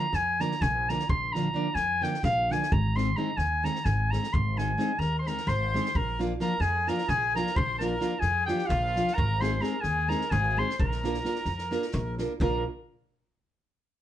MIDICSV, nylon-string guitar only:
0, 0, Header, 1, 2, 480
1, 0, Start_track
1, 0, Tempo, 462963
1, 1139, Time_signature, 7, 3, 24, 8
1, 7375, Tempo, 459770
1, 14583, End_track
2, 0, Start_track
2, 0, Title_t, "Nylon-string guitar"
2, 0, Program_c, 0, 24
2, 412, Note_on_c, 0, 50, 63
2, 420, Note_on_c, 0, 53, 54
2, 422, Note_on_c, 0, 58, 67
2, 427, Note_on_c, 0, 62, 67
2, 545, Note_off_c, 0, 50, 0
2, 547, Note_off_c, 0, 53, 0
2, 549, Note_off_c, 0, 58, 0
2, 552, Note_off_c, 0, 62, 0
2, 928, Note_on_c, 0, 50, 54
2, 929, Note_on_c, 0, 53, 51
2, 935, Note_on_c, 0, 58, 56
2, 940, Note_on_c, 0, 62, 65
2, 1054, Note_off_c, 0, 50, 0
2, 1054, Note_off_c, 0, 53, 0
2, 1058, Note_off_c, 0, 58, 0
2, 1060, Note_off_c, 0, 62, 0
2, 1394, Note_on_c, 0, 50, 65
2, 1405, Note_on_c, 0, 53, 66
2, 1411, Note_on_c, 0, 58, 64
2, 1420, Note_on_c, 0, 62, 79
2, 1519, Note_off_c, 0, 50, 0
2, 1524, Note_off_c, 0, 53, 0
2, 1528, Note_off_c, 0, 58, 0
2, 1532, Note_off_c, 0, 62, 0
2, 1595, Note_on_c, 0, 50, 74
2, 1602, Note_on_c, 0, 53, 69
2, 1609, Note_on_c, 0, 58, 62
2, 1617, Note_on_c, 0, 62, 89
2, 1726, Note_off_c, 0, 50, 0
2, 1730, Note_off_c, 0, 53, 0
2, 1732, Note_off_c, 0, 58, 0
2, 1737, Note_off_c, 0, 62, 0
2, 2083, Note_on_c, 0, 50, 54
2, 2090, Note_on_c, 0, 53, 55
2, 2094, Note_on_c, 0, 58, 60
2, 2106, Note_on_c, 0, 62, 70
2, 2222, Note_off_c, 0, 50, 0
2, 2224, Note_off_c, 0, 53, 0
2, 2227, Note_off_c, 0, 58, 0
2, 2233, Note_off_c, 0, 62, 0
2, 2586, Note_on_c, 0, 50, 51
2, 2594, Note_on_c, 0, 53, 55
2, 2602, Note_on_c, 0, 58, 59
2, 2607, Note_on_c, 0, 62, 61
2, 2724, Note_off_c, 0, 50, 0
2, 2728, Note_off_c, 0, 53, 0
2, 2732, Note_off_c, 0, 58, 0
2, 2735, Note_off_c, 0, 62, 0
2, 3062, Note_on_c, 0, 51, 81
2, 3069, Note_on_c, 0, 56, 72
2, 3077, Note_on_c, 0, 63, 69
2, 3079, Note_on_c, 0, 60, 66
2, 3194, Note_off_c, 0, 51, 0
2, 3197, Note_off_c, 0, 56, 0
2, 3201, Note_off_c, 0, 63, 0
2, 3203, Note_off_c, 0, 60, 0
2, 3281, Note_on_c, 0, 51, 72
2, 3292, Note_on_c, 0, 56, 73
2, 3298, Note_on_c, 0, 60, 75
2, 3302, Note_on_c, 0, 63, 85
2, 3409, Note_off_c, 0, 51, 0
2, 3415, Note_off_c, 0, 56, 0
2, 3419, Note_off_c, 0, 60, 0
2, 3419, Note_off_c, 0, 63, 0
2, 3767, Note_on_c, 0, 51, 68
2, 3773, Note_on_c, 0, 56, 65
2, 3779, Note_on_c, 0, 60, 58
2, 3788, Note_on_c, 0, 63, 80
2, 3904, Note_off_c, 0, 51, 0
2, 3907, Note_off_c, 0, 56, 0
2, 3910, Note_off_c, 0, 60, 0
2, 3915, Note_off_c, 0, 63, 0
2, 4273, Note_on_c, 0, 51, 59
2, 4280, Note_on_c, 0, 56, 55
2, 4287, Note_on_c, 0, 60, 59
2, 4294, Note_on_c, 0, 63, 52
2, 4408, Note_off_c, 0, 51, 0
2, 4409, Note_off_c, 0, 56, 0
2, 4415, Note_off_c, 0, 60, 0
2, 4418, Note_off_c, 0, 63, 0
2, 4740, Note_on_c, 0, 51, 73
2, 4747, Note_on_c, 0, 56, 60
2, 4756, Note_on_c, 0, 60, 61
2, 4761, Note_on_c, 0, 63, 69
2, 4872, Note_off_c, 0, 51, 0
2, 4876, Note_off_c, 0, 56, 0
2, 4881, Note_off_c, 0, 60, 0
2, 4883, Note_off_c, 0, 63, 0
2, 4951, Note_on_c, 0, 51, 61
2, 4956, Note_on_c, 0, 56, 67
2, 4963, Note_on_c, 0, 60, 61
2, 4971, Note_on_c, 0, 63, 84
2, 5084, Note_off_c, 0, 51, 0
2, 5086, Note_off_c, 0, 56, 0
2, 5090, Note_off_c, 0, 60, 0
2, 5094, Note_off_c, 0, 63, 0
2, 5448, Note_on_c, 0, 51, 55
2, 5460, Note_on_c, 0, 56, 53
2, 5463, Note_on_c, 0, 60, 53
2, 5473, Note_on_c, 0, 63, 63
2, 5584, Note_off_c, 0, 51, 0
2, 5590, Note_off_c, 0, 56, 0
2, 5590, Note_off_c, 0, 60, 0
2, 5596, Note_off_c, 0, 63, 0
2, 5951, Note_on_c, 0, 51, 61
2, 5955, Note_on_c, 0, 56, 59
2, 5962, Note_on_c, 0, 60, 50
2, 5966, Note_on_c, 0, 63, 66
2, 6085, Note_off_c, 0, 51, 0
2, 6088, Note_off_c, 0, 56, 0
2, 6090, Note_off_c, 0, 60, 0
2, 6093, Note_off_c, 0, 63, 0
2, 6418, Note_on_c, 0, 53, 61
2, 6422, Note_on_c, 0, 58, 61
2, 6428, Note_on_c, 0, 62, 59
2, 6433, Note_on_c, 0, 65, 76
2, 6550, Note_off_c, 0, 53, 0
2, 6553, Note_off_c, 0, 58, 0
2, 6554, Note_off_c, 0, 62, 0
2, 6557, Note_off_c, 0, 65, 0
2, 6638, Note_on_c, 0, 53, 83
2, 6643, Note_on_c, 0, 58, 56
2, 6649, Note_on_c, 0, 62, 66
2, 6657, Note_on_c, 0, 65, 69
2, 6766, Note_off_c, 0, 53, 0
2, 6768, Note_off_c, 0, 58, 0
2, 6771, Note_off_c, 0, 62, 0
2, 6775, Note_off_c, 0, 65, 0
2, 7125, Note_on_c, 0, 53, 69
2, 7130, Note_on_c, 0, 58, 51
2, 7142, Note_on_c, 0, 62, 55
2, 7149, Note_on_c, 0, 65, 70
2, 7260, Note_off_c, 0, 53, 0
2, 7263, Note_off_c, 0, 58, 0
2, 7269, Note_off_c, 0, 62, 0
2, 7270, Note_off_c, 0, 65, 0
2, 7626, Note_on_c, 0, 53, 61
2, 7638, Note_on_c, 0, 58, 49
2, 7641, Note_on_c, 0, 62, 49
2, 7646, Note_on_c, 0, 65, 66
2, 7762, Note_off_c, 0, 53, 0
2, 7769, Note_off_c, 0, 58, 0
2, 7769, Note_off_c, 0, 62, 0
2, 7772, Note_off_c, 0, 65, 0
2, 8097, Note_on_c, 0, 53, 74
2, 8103, Note_on_c, 0, 58, 68
2, 8108, Note_on_c, 0, 62, 62
2, 8116, Note_on_c, 0, 65, 64
2, 8230, Note_off_c, 0, 53, 0
2, 8233, Note_off_c, 0, 58, 0
2, 8235, Note_off_c, 0, 62, 0
2, 8239, Note_off_c, 0, 65, 0
2, 8303, Note_on_c, 0, 53, 76
2, 8310, Note_on_c, 0, 58, 57
2, 8318, Note_on_c, 0, 62, 59
2, 8319, Note_on_c, 0, 65, 86
2, 8439, Note_off_c, 0, 53, 0
2, 8444, Note_off_c, 0, 58, 0
2, 8446, Note_off_c, 0, 62, 0
2, 8447, Note_off_c, 0, 65, 0
2, 8797, Note_on_c, 0, 53, 58
2, 8807, Note_on_c, 0, 58, 70
2, 8811, Note_on_c, 0, 62, 67
2, 8818, Note_on_c, 0, 65, 85
2, 8938, Note_off_c, 0, 53, 0
2, 8944, Note_off_c, 0, 58, 0
2, 8945, Note_off_c, 0, 62, 0
2, 8949, Note_off_c, 0, 65, 0
2, 9303, Note_on_c, 0, 53, 71
2, 9306, Note_on_c, 0, 58, 54
2, 9314, Note_on_c, 0, 62, 56
2, 9321, Note_on_c, 0, 65, 60
2, 9443, Note_off_c, 0, 53, 0
2, 9444, Note_off_c, 0, 58, 0
2, 9448, Note_off_c, 0, 62, 0
2, 9452, Note_off_c, 0, 65, 0
2, 9771, Note_on_c, 0, 56, 60
2, 9779, Note_on_c, 0, 60, 73
2, 9783, Note_on_c, 0, 63, 70
2, 9788, Note_on_c, 0, 68, 78
2, 9909, Note_off_c, 0, 56, 0
2, 9913, Note_off_c, 0, 60, 0
2, 9915, Note_off_c, 0, 63, 0
2, 9916, Note_off_c, 0, 68, 0
2, 9975, Note_on_c, 0, 56, 63
2, 9989, Note_on_c, 0, 60, 69
2, 9993, Note_on_c, 0, 63, 76
2, 10001, Note_on_c, 0, 68, 76
2, 10117, Note_off_c, 0, 56, 0
2, 10124, Note_off_c, 0, 60, 0
2, 10125, Note_off_c, 0, 63, 0
2, 10130, Note_off_c, 0, 68, 0
2, 10476, Note_on_c, 0, 56, 70
2, 10484, Note_on_c, 0, 60, 53
2, 10491, Note_on_c, 0, 63, 68
2, 10495, Note_on_c, 0, 68, 71
2, 10619, Note_off_c, 0, 56, 0
2, 10623, Note_off_c, 0, 60, 0
2, 10626, Note_off_c, 0, 63, 0
2, 10629, Note_off_c, 0, 68, 0
2, 10980, Note_on_c, 0, 56, 59
2, 10992, Note_on_c, 0, 60, 55
2, 10998, Note_on_c, 0, 63, 46
2, 11008, Note_on_c, 0, 68, 61
2, 11122, Note_off_c, 0, 56, 0
2, 11128, Note_off_c, 0, 60, 0
2, 11131, Note_off_c, 0, 63, 0
2, 11136, Note_off_c, 0, 68, 0
2, 11471, Note_on_c, 0, 58, 76
2, 11483, Note_on_c, 0, 62, 69
2, 11485, Note_on_c, 0, 65, 60
2, 11491, Note_on_c, 0, 70, 79
2, 11598, Note_off_c, 0, 58, 0
2, 11605, Note_off_c, 0, 62, 0
2, 11605, Note_off_c, 0, 65, 0
2, 11609, Note_off_c, 0, 70, 0
2, 11690, Note_on_c, 0, 58, 69
2, 11696, Note_on_c, 0, 62, 66
2, 11701, Note_on_c, 0, 65, 63
2, 11711, Note_on_c, 0, 70, 67
2, 11814, Note_off_c, 0, 58, 0
2, 11817, Note_off_c, 0, 62, 0
2, 11819, Note_off_c, 0, 65, 0
2, 11825, Note_off_c, 0, 70, 0
2, 12174, Note_on_c, 0, 58, 77
2, 12181, Note_on_c, 0, 62, 69
2, 12186, Note_on_c, 0, 65, 62
2, 12190, Note_on_c, 0, 70, 84
2, 12307, Note_off_c, 0, 58, 0
2, 12311, Note_off_c, 0, 62, 0
2, 12313, Note_off_c, 0, 65, 0
2, 12315, Note_off_c, 0, 70, 0
2, 12670, Note_on_c, 0, 58, 64
2, 12676, Note_on_c, 0, 62, 61
2, 12685, Note_on_c, 0, 65, 58
2, 12692, Note_on_c, 0, 70, 67
2, 12806, Note_off_c, 0, 58, 0
2, 12808, Note_off_c, 0, 62, 0
2, 12813, Note_off_c, 0, 65, 0
2, 12817, Note_off_c, 0, 70, 0
2, 12906, Note_on_c, 0, 58, 82
2, 12908, Note_on_c, 0, 62, 88
2, 12910, Note_on_c, 0, 70, 84
2, 12911, Note_on_c, 0, 65, 76
2, 13138, Note_off_c, 0, 58, 0
2, 13139, Note_off_c, 0, 62, 0
2, 13139, Note_off_c, 0, 70, 0
2, 13140, Note_off_c, 0, 65, 0
2, 14583, End_track
0, 0, End_of_file